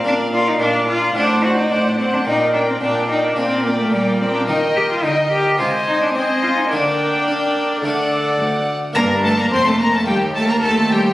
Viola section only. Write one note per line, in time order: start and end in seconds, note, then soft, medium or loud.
0.05 0.31 A#4 medium
0.32 0.59 A#4 soft
0.60 0.87 A#4 soft
0.88 1.15 A#4 soft
1.16 1.42 C5 medium
1.43 1.69 C5 medium
1.70 1.97 C5 soft
1.98 2.26 C5 medium
2.26 2.53 A#4 medium
2.54 2.81 A#4 soft
2.82 3.08 A#4 soft
3.09 3.36 A#4 soft
3.37 3.64 A#4 medium
3.65 3.92 A#4 soft
3.93 4.19 A#4 soft
4.20 4.46 A#4 soft
4.48 4.99 A#4 soft
5.03 5.58 A#4 soft
5.59 6.13 C5 medium
6.15 6.70 C5 medium
6.71 7.81 A#4 medium
7.84 8.76 A4 medium
8.96 9.48 D4 medium
9.52 10.61 A#3 medium
10.63 11.13 C4 medium